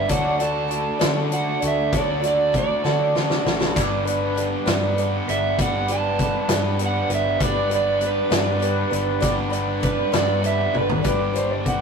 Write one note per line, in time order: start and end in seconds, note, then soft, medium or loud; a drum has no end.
0.00 0.10 E5 medium
0.08 0.87 D2 loud
0.08 0.40 D3 medium
0.08 0.40 F#3 medium
0.08 0.40 A3 medium
0.08 0.39 D4 medium
0.08 0.38 F#4 medium
0.08 0.99 A4 medium
0.08 0.37 D5 medium
0.08 0.41 F#5 medium
0.08 kick loud
0.08 closed hi-hat medium
0.38 0.67 A3 soft
0.38 0.68 D4 medium
0.38 0.68 F#4 medium
0.38 0.69 D5 medium
0.38 closed hi-hat medium
0.42 1.30 A5 loud
0.68 1.00 A3 medium
0.68 1.00 D4 medium
0.68 0.99 F#4 medium
0.68 0.98 D5 medium
0.68 closed hi-hat medium
0.99 1.32 D3 medium
0.99 1.54 D3 medium
0.99 1.32 F#3 medium
0.99 1.29 A3 medium
0.99 1.30 D4 medium
0.99 1.31 F#4 medium
0.99 1.90 A4 medium
0.99 1.31 D5 medium
0.99 snare loud
0.99 closed hi-hat loud
1.30 1.61 A3 medium
1.30 1.62 D4 medium
1.30 1.61 F#4 medium
1.30 1.59 D5 medium
1.30 1.62 F#5 medium
1.30 closed hi-hat medium
1.61 1.88 D2 medium
1.61 1.92 A3 soft
1.61 1.92 D4 soft
1.61 1.93 F#4 soft
1.61 1.92 D5 medium
1.61 closed hi-hat medium
1.67 1.94 E5 medium
1.93 2.70 D2 loud
1.93 2.23 D3 medium
1.93 2.24 F#3 medium
1.93 2.22 A3 medium
1.93 2.22 D4 medium
1.93 2.21 F#4 medium
1.93 2.83 A4 medium
1.93 2.20 D5 medium
1.93 kick loud
1.93 closed hi-hat medium
1.97 2.25 D5 medium
2.21 2.51 A3 soft
2.21 2.52 D4 soft
2.21 2.53 F#4 medium
2.21 2.53 D5 medium
2.21 closed hi-hat medium
2.28 2.55 D5 medium
2.52 2.83 A3 medium
2.52 2.84 D4 medium
2.52 2.83 F#4 medium
2.52 2.83 D5 medium
2.52 kick medium
2.52 closed hi-hat medium
2.58 3.74 D5 medium
2.84 3.36 D3 medium
2.84 3.15 D3 medium
2.84 3.15 F#3 medium
2.84 3.14 A3 medium
2.84 3.15 D4 medium
2.84 3.15 F#4 medium
2.84 3.74 A4 medium
2.84 3.15 D5 medium
2.84 snare medium
3.15 3.45 A3 medium
3.15 3.45 D4 medium
3.15 3.44 F#4 medium
3.15 3.43 D5 medium
3.15 snare medium
3.30 snare medium
3.44 3.71 A1 medium
3.44 3.67 G3 medium
3.44 3.75 A3 soft
3.44 3.69 A3 medium
3.44 3.75 D4 medium
3.44 3.76 F#4 medium
3.44 3.75 D5 medium
3.44 snare loud
3.50 3.70 B3 medium
3.50 3.72 C4 medium
3.56 3.73 D4 medium
3.56 3.74 E4 medium
3.61 3.76 F4 medium
3.61 3.74 G4 medium
3.61 snare medium
3.67 3.79 A4 medium
3.67 3.74 B4 medium
3.73 4.53 G1 medium
3.73 4.05 G2 medium
3.73 4.06 G3 medium
3.73 4.06 B3 medium
3.73 7.37 D4 medium
3.73 4.05 D4 loud
3.73 7.36 G4 medium
3.73 4.05 G4 medium
3.73 7.36 B4 medium
3.73 4.04 B4 medium
3.73 3.82 C5 medium
3.73 kick loud
3.73 closed hi-hat medium
3.73 splash medium
4.05 4.34 B3 medium
4.05 4.36 D4 medium
4.05 4.36 G4 medium
4.05 4.36 B4 medium
4.05 closed hi-hat medium
4.35 4.66 B3 medium
4.35 4.66 D4 medium
4.35 4.65 G4 medium
4.35 4.65 B4 medium
4.35 closed hi-hat medium
4.66 5.18 G2 medium
4.66 4.97 G2 medium
4.66 4.97 G3 medium
4.66 4.95 B3 medium
4.66 4.97 D4 medium
4.66 4.97 G4 medium
4.66 4.97 B4 medium
4.66 snare loud
4.66 closed hi-hat medium
4.97 5.27 B3 medium
4.97 5.28 D4 medium
4.97 5.28 G4 medium
4.97 5.26 B4 medium
4.97 closed hi-hat medium
5.28 5.53 G1 medium
5.28 5.58 B3 soft
5.28 5.58 D4 medium
5.28 5.58 G4 soft
5.28 5.58 B4 medium
5.28 5.58 E5 medium
5.28 closed hi-hat medium
5.58 6.35 G1 loud
5.58 5.89 G2 medium
5.58 5.89 G3 medium
5.58 5.89 B3 medium
5.58 5.89 D4 medium
5.58 5.89 G4 medium
5.58 5.88 B4 medium
5.58 5.89 F#5 medium
5.58 kick loud
5.58 closed hi-hat loud
5.88 6.18 B3 soft
5.88 6.19 D4 medium
5.88 6.19 G4 medium
5.88 6.19 B4 medium
5.88 closed hi-hat medium
5.92 6.79 A5 medium
6.19 6.49 B3 medium
6.19 6.50 D4 medium
6.19 6.49 G4 medium
6.19 6.49 B4 medium
6.19 kick medium
6.19 closed hi-hat medium
6.49 7.00 G2 medium
6.49 6.81 G2 medium
6.49 6.81 G3 medium
6.49 6.78 B3 medium
6.49 6.79 D4 medium
6.49 6.80 G4 medium
6.49 6.80 B4 medium
6.49 snare loud
6.49 closed hi-hat loud
6.79 7.10 B3 medium
6.79 7.10 D4 medium
6.79 7.10 G4 medium
6.79 7.09 B4 medium
6.79 closed hi-hat medium
6.86 7.12 F#5 medium
7.09 7.35 G1 medium
7.09 7.41 B3 soft
7.09 7.41 D4 soft
7.09 7.40 G4 medium
7.09 7.40 B4 medium
7.09 closed hi-hat medium
7.15 7.42 E5 medium
7.38 8.17 G1 medium
7.38 7.71 G2 medium
7.38 7.71 G3 medium
7.38 7.71 B3 medium
7.38 7.70 D4 medium
7.38 11.00 G4 medium
7.38 7.69 G4 medium
7.38 11.00 B4 medium
7.38 11.00 D5 medium
7.38 kick loud
7.38 closed hi-hat medium
7.42 7.68 B4 medium
7.42 7.72 D5 medium
7.70 7.99 B3 medium
7.70 8.00 D4 medium
7.70 8.01 G4 medium
7.70 8.00 B4 medium
7.70 closed hi-hat medium
7.75 8.02 D5 medium
8.00 8.30 B3 medium
8.00 8.30 D4 medium
8.00 8.29 G4 medium
8.00 8.29 B4 medium
8.00 closed hi-hat medium
8.07 9.22 B4 medium
8.30 8.83 G2 medium
8.30 8.62 G2 medium
8.30 8.62 G3 medium
8.30 8.58 B3 medium
8.30 8.59 D4 medium
8.30 8.60 G4 medium
8.30 8.60 B4 medium
8.30 snare loud
8.30 closed hi-hat loud
8.59 8.91 B3 medium
8.59 8.91 D4 medium
8.59 8.90 G4 medium
8.59 8.89 B4 medium
8.59 closed hi-hat medium
8.91 9.17 G1 medium
8.91 9.20 B3 medium
8.91 9.20 D4 medium
8.91 9.21 G4 medium
8.91 9.21 B4 medium
8.91 closed hi-hat medium
9.20 10.00 G1 loud
9.20 9.52 G2 loud
9.20 9.52 G3 medium
9.20 9.51 B3 loud
9.20 9.50 D4 loud
9.20 9.50 G4 loud
9.20 9.49 B4 loud
9.20 kick loud
9.20 closed hi-hat medium
9.50 9.79 B3 medium
9.50 9.81 D4 medium
9.50 9.82 G4 medium
9.50 9.82 B4 medium
9.50 closed hi-hat medium
9.80 10.12 B3 medium
9.80 10.12 D4 medium
9.80 10.11 G4 medium
9.80 10.11 B4 medium
9.80 kick medium
9.80 closed hi-hat medium
9.85 10.13 B4 loud
10.12 10.65 G2 loud
10.12 10.44 G2 medium
10.12 10.44 G3 medium
10.12 10.42 B3 medium
10.12 10.42 D4 medium
10.12 10.43 G4 medium
10.12 10.43 B4 medium
10.12 snare loud
10.12 closed hi-hat medium
10.18 10.45 D5 medium
10.43 10.74 B3 medium
10.43 10.74 D4 medium
10.43 10.73 G4 medium
10.43 10.72 B4 medium
10.43 10.75 E5 medium
10.43 closed hi-hat medium
10.74 11.00 G1 medium
10.74 11.03 B3 soft
10.74 11.03 D4 medium
10.74 11.03 G4 medium
10.74 11.04 B4 medium
10.74 high tom medium
10.78 11.05 B4 loud
10.90 floor tom medium
11.02 11.81 G1 medium
11.02 11.34 G2 medium
11.02 11.34 D3 medium
11.02 11.35 G3 medium
11.02 11.81 B3 medium
11.02 11.34 D4 medium
11.02 11.32 G4 medium
11.02 11.32 B4 medium
11.02 11.37 B4 medium
11.02 kick loud
11.02 closed hi-hat loud
11.33 11.62 G3 soft
11.33 11.64 D4 soft
11.33 11.65 G4 medium
11.33 11.65 B4 medium
11.33 11.49 C5 medium
11.33 closed hi-hat medium
11.51 11.65 D5 medium
11.63 11.81 G3 medium
11.63 11.81 D4 medium
11.63 11.81 G4 medium
11.63 11.81 B4 medium
11.63 kick medium
11.63 closed hi-hat medium
11.68 11.81 F#5 medium